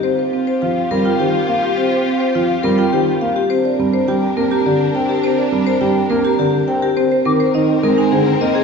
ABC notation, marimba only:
X:1
M:3/4
L:1/16
Q:1/4=104
K:Gphr
V:1 name="Marimba"
C c C z F z C F c z2 G | C c C z F z C F c z2 G | C d C z G z C G d z2 B | C d C z G z C G d z2 B |
C c C z E z C E c z2 A |]